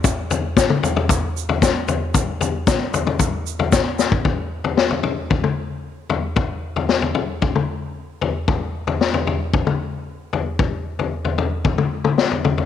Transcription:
0.04 kick, floor tom, shaker
0.31 floor tom, shaker
0.57 kick, snare, shaker
0.70 mid tom
0.83 floor tom, shaker
0.96 floor tom
1.09 kick, floor tom, shaker
1.37 shaker
1.49 floor tom
1.62 kick, snare, shaker
1.88 floor tom, shaker
2.14 kick, floor tom, shaker
2.41 floor tom, shaker
2.67 kick, snare, shaker
2.94 floor tom, shaker
3.07 floor tom
3.19 kick, floor tom, shaker
3.47 shaker
3.59 floor tom
3.72 kick, snare, shaker
3.99 snare, shaker
4.12 kick
4.25 kick, floor tom
4.64 floor tom
4.77 snare
4.90 floor tom
5.03 floor tom
5.30 kick, floor tom
5.44 mid tom
6.10 floor tom
6.36 kick, floor tom
6.76 floor tom
6.89 snare
7.02 floor tom
7.15 floor tom
7.42 kick, floor tom
7.55 mid tom
8.21 floor tom
8.48 kick, floor tom
8.87 floor tom
9.01 snare
9.14 floor tom
9.27 floor tom
9.54 kick, floor tom
9.67 mid tom
10.33 floor tom
10.59 kick, floor tom
10.99 floor tom
11.25 floor tom
11.38 floor tom
11.65 kick, floor tom
11.78 mid tom
12.04 mid tom
12.18 snare
12.31 floor tom
12.45 floor tom, mid tom
12.58 floor tom

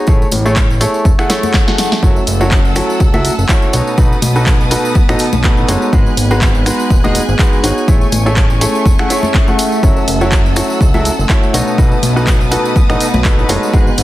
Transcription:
Already playing: B3 F#5
0.07 A1 A3 C#4 E4 G#4 A4 C#5, kick, tambourine
0.21 A3, tambourine
0.31 A1 G#5, open hi-hat, tambourine, high conga
0.38 E5
0.45 A3 E4 G#4 A4 C#5, tambourine
0.56 kick, clap, tambourine
0.70 tambourine
0.81 A3 E4 G#4 A4 C#5, open hi-hat, tambourine
0.94 tambourine
1.05 E1, kick, tambourine, swell
1.19 A3 E4 G#4 A4 F#5, finger snap, tambourine
1.29 A3 E4 G#4 A4 C#5, snare, open hi-hat, tambourine
1.43 tambourine, high conga
1.54 kick, snare, clap, tambourine
1.67 A3 E4 G#4 A4 F#5, snare, tambourine, high conga
1.78 snare, open hi-hat, tambourine
1.92 snare, tambourine
2.03 F#1 F#3 E4 F#4 A4 C#5 F#5 E6, kick, tambourine
2.16 tambourine
2.27 F#1, open hi-hat, tambourine
2.41 F#3 E4 F#4 A4 C#5, tambourine
2.51 kick, clap, tambourine
2.65 tambourine
2.75 F#3 E4 F#4 A4 C#5 F#5, finger snap, open hi-hat, tambourine
2.90 tambourine
3.00 C#2, kick, tambourine
3.14 F#3 E4 F#4 A4 E5, tambourine, high conga
3.25 open hi-hat, tambourine
3.38 F#1, tambourine
3.49 E4 F#4 A4 C#5, kick, clap, tambourine
3.62 tambourine
3.73 B1 B2 B3 D#4 F#4 A4 B4 C#5 A5 D#6, open hi-hat, tambourine
3.87 tambourine
3.98 B1 B2 D#4 F#4 A4 B4, kick, tambourine
4.12 tambourine
4.22 B1 D#5, open hi-hat, tambourine, high conga
4.36 B2 D#4 F#4 A4 B4, tambourine
4.46 kick, clap, tambourine
4.61 tambourine
4.71 B2 D#4 F#4 A4 B4, open hi-hat, tambourine
4.85 tambourine
4.95 kick, tambourine
5.09 A1 B2 D#4 F#4 A4 D#5, finger snap, tambourine
5.19 open hi-hat, tambourine
5.33 B1, tambourine, high conga
5.44 B2 D#4 F#4 A4 B4, kick, clap, tambourine
5.57 A1, tambourine
5.68 F#1 G#3 D#4 F#4 A4 C#5, open hi-hat, tambourine
5.82 tambourine
5.93 G#1 G#3 D#4 F#4 G#4 B4 G#5 F#6, kick, tambourine
6.06 tambourine
6.11 G#4
6.17 G#1, open hi-hat, tambourine
6.31 G#3 D#4 F#4 G#4 B4, tambourine
6.41 kick, clap, tambourine
6.55 tambourine
6.66 G#3 D#4 F#4 G#4 B4, finger snap, open hi-hat, tambourine
6.79 tambourine
6.90 D#1, kick, tambourine
7.04 G#3 D#4 F#4 G#4 D#5, tambourine, high conga
7.15 open hi-hat, tambourine
7.28 G#1, tambourine
7.39 G#3 D#4 F#4 G#4 B4, kick, clap, tambourine
7.53 tambourine
7.64 G#1 D#4 F#4 G#4 C#5, open hi-hat, tambourine
7.78 tambourine
7.88 A1 A3 C#4 E4 G#4 A4 C#5 C#6, kick, tambourine
8.01 tambourine
8.12 A1 A3, open hi-hat, tambourine, high conga
8.26 A3 E4 G#4 A4 C#5, tambourine
8.35 E5 G#5, kick, clap, tambourine
8.50 tambourine
8.61 A3 E4 G#4 A4 C#5, open hi-hat, tambourine
8.75 tambourine
8.86 E1, kick, tambourine
8.98 A3 E4 G#4 A4 F#5, finger snap, tambourine
9.10 A3 E4 G#4 A4 C#5, open hi-hat, tambourine
9.23 tambourine, high conga
9.34 kick, clap, tambourine
9.48 A3 E4 G#4 A4 F#5, tambourine, high conga
9.59 open hi-hat, tambourine
9.72 tambourine
9.83 F#1 F#3 E4 F#4 A4 C#5 F#5 E6, kick, tambourine
9.96 tambourine
10.03 F#5
10.08 F#1, open hi-hat, tambourine
10.21 F#3 E4 F#4 A4 C#5, tambourine
10.32 kick, clap, tambourine
10.46 tambourine
10.56 F#3 E4 F#4 A4 C#5, finger snap, open hi-hat, tambourine
10.70 tambourine
10.81 C#2, kick, tambourine
10.94 F#3 E4 F#4 A4 E5, tambourine, high conga
11.05 open hi-hat, tambourine
11.19 F#1, tambourine
11.29 E4 F#4 A4 C#5, kick, clap, tambourine
11.43 tambourine
11.54 B1 B2 B3 D#4 F#4 A4 B4 C#5 A5 D#6, open hi-hat, tambourine
11.67 tambourine
11.78 B1 B2 D#4 F#4 A4 B4, kick, tambourine
11.92 tambourine
12.00 B1 D#5, open hi-hat, tambourine, high conga
12.16 B2 D#4 F#4 A4 B4, tambourine
12.27 kick, clap, tambourine
12.41 tambourine
12.51 B2 D#4 F#4 A4 B4, open hi-hat, tambourine
12.65 tambourine
12.76 kick, tambourine
12.89 A1 B2 D#4 F#4 A4 D#5, finger snap, tambourine
13.00 open hi-hat, tambourine
13.14 B1, tambourine, high conga
13.24 B2 D#4 F#4 A4 B4, kick, clap, tambourine
13.38 A1, tambourine
13.49 F#1 G#3 D#4 F#4 A4 C#5, open hi-hat, tambourine
13.63 tambourine
13.73 G#1 G#3 D#4 F#4 G#4 B4 G#5 F#6, kick, tambourine
13.79 G#4
13.87 tambourine
13.98 G#1, open hi-hat, tambourine

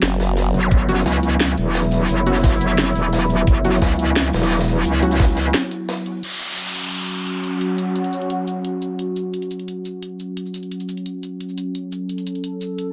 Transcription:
Already playing: F#3 B3 C#4 F#4
0.02 F#1, snare, closed hi-hat
0.12 closed hi-hat
0.20 snare, closed hi-hat
0.36 snare, closed hi-hat
0.54 F#1, closed hi-hat
0.63 zap
0.71 F#1 E4, kick, closed hi-hat
0.89 F#3 C#4 F#4, closed hi-hat
0.97 snare
1.06 C#2, snare, closed hi-hat
1.15 closed hi-hat
1.23 closed hi-hat
1.32 closed hi-hat
1.40 snare, closed hi-hat
1.50 closed hi-hat
1.57 E1, closed hi-hat
1.75 snare, closed hi-hat
1.91 snare, closed hi-hat
2.09 F#1, closed hi-hat
2.27 F#3 C#4 F#4, closed hi-hat
2.35 snare
2.43 kick, snare, closed hi-hat, open hi-hat
2.52 closed hi-hat
2.61 closed hi-hat
2.70 closed hi-hat
2.78 snare, closed hi-hat
2.96 E1, closed hi-hat
3.13 snare, closed hi-hat
3.30 closed hi-hat
3.47 F#1, kick, closed hi-hat
3.65 F#3 C#4 F#4, closed hi-hat
3.73 snare
3.82 C#2, kick, snare, closed hi-hat
3.90 closed hi-hat
3.99 closed hi-hat
4.08 closed hi-hat
4.16 snare, closed hi-hat
4.24 closed hi-hat
4.33 E1, snare, closed hi-hat
4.42 snare, closed hi-hat
4.51 snare, closed hi-hat
4.59 snare, closed hi-hat
4.68 snare, closed hi-hat
4.85 C#2, closed hi-hat
5.02 F#3 C#4 F#4, closed hi-hat
5.10 snare, closed hi-hat
5.20 kick, snare, closed hi-hat, open hi-hat
5.28 closed hi-hat
5.37 closed hi-hat
5.46 closed hi-hat
5.54 snare, closed hi-hat
5.63 closed hi-hat
5.71 closed hi-hat
5.89 snare, closed hi-hat, open hi-hat
6.06 closed hi-hat
6.23 F#3 C#4 F#4, closed hi-hat, downlifter
6.40 closed hi-hat, shaker
6.58 closed hi-hat
6.66 closed hi-hat, shaker
6.75 closed hi-hat, shaker
6.84 closed hi-hat
6.92 closed hi-hat
7.09 closed hi-hat, shaker
7.27 closed hi-hat
7.44 closed hi-hat, shaker
7.61 closed hi-hat
7.78 closed hi-hat, shaker
7.96 closed hi-hat
8.04 closed hi-hat, shaker
8.13 closed hi-hat, shaker
8.21 closed hi-hat
8.30 closed hi-hat
8.47 closed hi-hat, shaker
8.65 closed hi-hat
8.82 closed hi-hat, shaker
8.99 closed hi-hat
9.16 closed hi-hat, shaker
9.34 closed hi-hat
9.42 closed hi-hat, shaker
9.51 closed hi-hat, shaker
9.59 closed hi-hat
9.68 closed hi-hat
9.85 closed hi-hat, shaker
10.03 closed hi-hat
10.20 closed hi-hat, shaker
10.37 closed hi-hat
10.46 shaker
10.54 closed hi-hat, shaker
10.63 closed hi-hat
10.71 closed hi-hat
10.80 closed hi-hat, shaker
10.89 closed hi-hat, shaker
10.97 closed hi-hat
11.06 closed hi-hat
11.23 closed hi-hat, shaker
11.40 closed hi-hat
11.49 shaker
11.58 closed hi-hat, shaker
11.75 A4, closed hi-hat
11.92 closed hi-hat, shaker
12.09 closed hi-hat
12.18 closed hi-hat, shaker
12.27 closed hi-hat, shaker
12.35 closed hi-hat
12.44 closed hi-hat
12.61 closed hi-hat, shaker
12.78 closed hi-hat

